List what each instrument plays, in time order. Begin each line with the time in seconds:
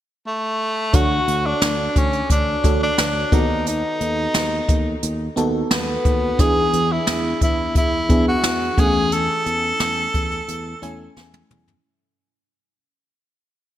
0.27 tenor saxophone A3
0.93 fretless electric bass D2, fm electric piano D3 D4 F#4 A4 C#5, tenor saxophone F#4, kick, closed hi-hat
1.27 fretless electric bass D2, closed hi-hat
1.46 tenor saxophone D4
1.62 fretless electric bass D2, snare, closed hi-hat
1.96 fretless electric bass D2, tenor saxophone C#4, kick, closed hi-hat
2.13 closed hi-hat
2.30 fretless electric bass D2, tenor saxophone D4, kick, closed hi-hat
2.64 fretless electric bass D2, fm electric piano D4 F#4 A4 C#5, kick, closed hi-hat
2.83 tenor saxophone D4
2.98 fretless electric bass D2, snare, closed hi-hat
3.32 fretless electric bass D#2, fm electric piano D#3 B3 D#4 F#4 A4, tenor saxophone D#4, kick, closed hi-hat
3.66 tenor saxophone D#4, closed hi-hat
4.00 fretless electric bass D#2, closed hi-hat
4.34 fretless electric bass D#2, snare, closed hi-hat
4.69 fretless electric bass D#2, kick, closed hi-hat
5.03 fretless electric bass D#2, closed hi-hat
5.36 fretless electric bass D#2, fm electric piano B3 D#4 F#4 A4, closed hi-hat
5.71 fretless electric bass D#2, tenor saxophone B3, snare, closed hi-hat
6.05 fretless electric bass D#2, kick, closed hi-hat
6.39 fretless electric bass E2, fm electric piano E3 B3 D4 E4 G#4, tenor saxophone G#4, kick, closed hi-hat
6.73 fretless electric bass E2, closed hi-hat
6.92 tenor saxophone E4
7.07 fretless electric bass E2, snare, closed hi-hat
7.41 fretless electric bass E2, tenor saxophone E4, kick, closed hi-hat
7.75 fretless electric bass E2, tenor saxophone E4, kick, closed hi-hat
8.09 fretless electric bass E2, fm electric piano B3 D4 E4 G#4, kick, closed hi-hat
8.28 tenor saxophone F#4
8.44 fretless electric bass E2, snare, closed hi-hat
8.77 fretless electric bass E2, fm electric piano E3 A3 C#4 E4 G#5, tenor saxophone G#4, kick, closed hi-hat
9.12 tenor saxophone A4, closed hi-hat
9.46 fretless electric bass E2, closed hi-hat
9.80 fretless electric bass E2, snare, closed hi-hat
10.14 fretless electric bass E2, kick, closed hi-hat
10.31 closed hi-hat
10.48 fretless electric bass E2, closed hi-hat
10.82 fretless electric bass E2, fm electric piano A3 C#4 E4 G#5, closed hi-hat
11.16 fretless electric bass E2, snare
11.34 high tom
11.50 fretless electric bass E2, mid tom
11.68 floor tom